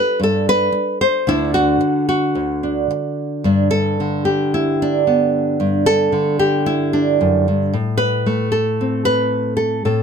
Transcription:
Already playing: B4
0.20 G2 A4
0.49 B4
0.72 muted nylon-string guitar stroke
1.01 C5
1.27 D2 D3 D4 E4
1.54 F#4
1.81 muted nylon-string guitar stroke
2.09 F#4
2.35 D2
2.63 D4
2.91 muted nylon-string guitar stroke
3.44 G2 D4
3.71 A4
4.00 D3
4.25 G4
4.54 E4
4.82 D4
5.07 B3
5.60 G2
5.86 A4
6.12 D3
6.39 G4
6.66 E4
6.93 D4
7.21 F#2
7.48 G2
7.73 A2
7.97 B4
8.26 A3
8.52 A4
8.81 C4
9.05 B4
9.57 A4
9.85 A2 A4

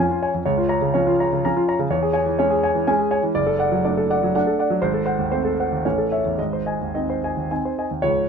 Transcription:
0.00 F3 C#4 G#5
0.11 F4
0.22 C#5 G#5
0.34 F2
0.45 C#2 C#5
0.58 F4
0.69 C#5 A#5
0.81 C#3
0.94 F3 C#4 C#5
1.07 F4
1.20 C#5 A#5
1.33 C#3
1.44 F3 C#4 A#5
1.56 F4
1.68 C#5 A#5
1.79 C#3
1.90 E2 C#5
2.02 G#4
2.13 C#5 G#5
2.26 E3
2.39 G#3 C#4 C#5
2.50 G#4
2.63 C#5 G#5
2.75 E3
2.87 G#3 C#4 G#5
2.99 G#4
3.11 C#5 G#5
3.23 E3
3.35 F#1 D5
3.47 A4
3.59 D5 F#5
3.72 F#3
3.85 A3 D4 D5
3.97 A4
4.10 D5 F#5
4.23 F#3
4.35 A3 D4 F#5
4.47 A4
4.59 D5 F#5
4.70 F#3
4.82 G#1 C5
4.94 A4
5.06 C5 F#5
5.18 D#2
5.32 A3 C4 C5
5.45 A4
5.60 C5 F#5
5.72 D#2
5.85 A1 A3 C#4 C#5
5.98 A4
6.12 C#5 E5
6.25 E2
6.39 G#1 D#5
6.53 C5
6.66 D#5 G#5
6.81 D#2
6.95 C4 D#4 D#5
7.10 C5
7.24 D#5 G#5
7.37 D#2
7.51 C4 D#4 G#5
7.65 C5
7.78 D#5 G#5
7.91 D#2
8.02 C#1 C#2 C#5

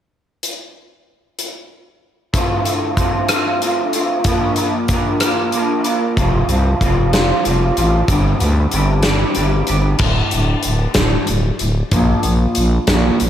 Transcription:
0.43 closed hi-hat
1.39 closed hi-hat
2.33 D2 A2 D3 A3 C4 F4, kick, closed hi-hat
2.65 D3 A3 C4 F4, closed hi-hat
2.97 D3 A3 C4, kick, closed hi-hat
3.01 F4
3.29 D3 A3 C4 F4, cross-stick, closed hi-hat
3.61 D3 A3 C4 F4, closed hi-hat
3.93 D3 A3 C4 F4, closed hi-hat
4.24 A#2 F3 A#3 D4 F4, kick, closed hi-hat
4.28 A#4
4.56 D4 F4 A#4, closed hi-hat
4.61 A#3
4.88 A#3 D4 F4, kick, closed hi-hat
4.93 A#4
5.20 A#3 D4 F4 A#4, cross-stick, closed hi-hat
5.52 A#3 D4 F4 A#4, closed hi-hat
5.84 A#3 D4 F4 A#4, closed hi-hat
6.17 F1 F2 C3 F3 G3 C4 F4, kick, closed hi-hat
6.49 C2 F3 G3 C4 F4, closed hi-hat
6.81 F1 F3 G3 C4 F4, kick, closed hi-hat
7.13 F3 G3 C4 F4, snare, closed hi-hat
7.45 F1 F3 G3 C4 F4, closed hi-hat
7.77 A1 F3 G3 C4 F4, closed hi-hat
8.08 G1 G2 D3 G3 C4 D4 G4, kick, closed hi-hat
8.40 D2 G3 C4 D4 G4, closed hi-hat
8.71 G1 G3 C4 D4 G4, closed hi-hat
9.03 G3 C4 D4 G4, snare, closed hi-hat
9.35 G1 G3 C4 D4 G4, closed hi-hat
9.67 G1 G3 C4 D4 G4, closed hi-hat
9.99 D1 D2 A2 D3, kick, crash
10.31 D1, closed hi-hat
10.63 D1, closed hi-hat
10.94 D1 D2 A2, kick, snare, closed hi-hat
10.98 D3
11.27 D1 D2 A2, closed hi-hat
11.59 D1 D2 A2, closed hi-hat
11.91 A#1 A#2 F3 A#3, kick, closed hi-hat
12.23 A#1, closed hi-hat
12.55 A#1, closed hi-hat
12.87 A#1 A#2 F3 A#3, kick, snare, closed hi-hat
13.20 A#1 A#2 F3, closed hi-hat

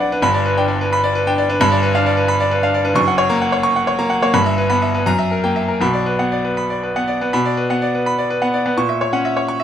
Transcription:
Already playing: B1 D4 B4 F#5 B5
0.00 D5
0.12 D4 B4
0.22 G1 G2 B5
0.34 D5
0.46 B4
0.57 D4 G5
0.68 D5
0.81 B4
0.93 B5
1.04 D5
1.15 B4
1.27 D4 G5
1.38 D5
1.49 D4 B4
1.60 G1 G2 B5
1.72 D5
1.83 B4
1.95 D4 F5
2.06 D5
2.17 B4
2.28 B5
2.40 D5
2.51 B4
2.63 D4 F5
2.74 D5
2.85 D4 B4
2.94 F#1 F#2 C#6
3.08 F#5
3.18 C#5
3.29 A#3 A#5
3.41 F#5
3.52 C#5
3.63 C#6
3.76 F#5
3.87 C#5
3.99 A#3 A#5
4.10 F#5
4.22 A#3 C#5
4.33 G1 G2 B5
4.46 E5
4.58 B4
4.70 B3 B5
4.82 E5
4.94 B4
5.06 F#2 A#5
5.19 E5
5.31 A#4
5.44 A#3 G5
5.56 E5
5.68 A#4
5.80 B1 B2 B5
5.93 D5
6.06 B4
6.19 B3 F#5
6.32 D5
6.45 B4
6.57 B5
6.70 D5
6.83 B4
6.96 B3 F#5
7.08 D5
7.21 B3 B4
7.33 B2 B5
7.45 D5
7.57 B4
7.70 B3 F#5
7.82 D5
7.95 B4
8.06 B5
8.19 D5
8.30 B4
8.42 B3 F#5
8.54 D5
8.66 B3 B4
8.77 A#2 C#6
8.89 E5
9.01 C#5
9.13 C#4 F#5
9.25 E5
9.37 C#5
9.48 C#6
9.60 E5

